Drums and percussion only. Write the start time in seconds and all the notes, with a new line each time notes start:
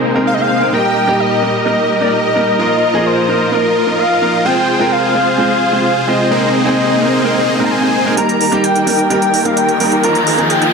8.17 closed hi-hat
8.29 closed hi-hat
8.41 open hi-hat
8.52 closed hi-hat
8.64 closed hi-hat
8.75 closed hi-hat
8.87 open hi-hat
8.99 closed hi-hat
9.10 closed hi-hat
9.22 closed hi-hat
9.34 open hi-hat
9.45 closed hi-hat
9.57 closed hi-hat
9.69 closed hi-hat
9.80 open hi-hat
9.92 closed hi-hat
10.03 closed hi-hat
10.15 closed hi-hat
10.27 open hi-hat
10.38 closed hi-hat
10.50 closed hi-hat
10.62 closed hi-hat